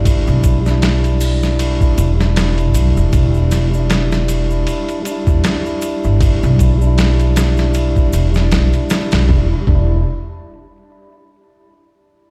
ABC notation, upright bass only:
X:1
M:4/4
L:1/16
Q:"Swing 16ths" 1/4=78
K:Em
V:1 name="Upright bass" clef=bass
G,,, B,,,8 z E,,,4 B,,, E,,, | E,,,8 z3 E,, z3 G,,,- | G,,, B,,,8 z E,,,2 B,,, z2 B,,, | E,,, z E,,,2 z12 |]